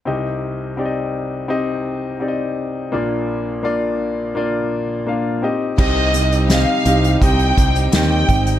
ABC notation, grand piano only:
X:1
M:4/4
L:1/8
Q:1/4=84
K:Cm
V:1 name="Grand piano"
[CEGe]2 [CEGde]2 [CEGe]2 [CEGde]2 | [B,DFd]2 [B,DFd]2 [B,DFd]2 [B,DFf] [CEGe] | [CEGe]2 [CEGe] [CEGe] [CEGe]2 [CEGe]2 |]
V:2 name="Grand piano" clef=bass
[C,,C,]8 | [B,,,B,,]6- [B,,,B,,] z | C,3 z4 z |]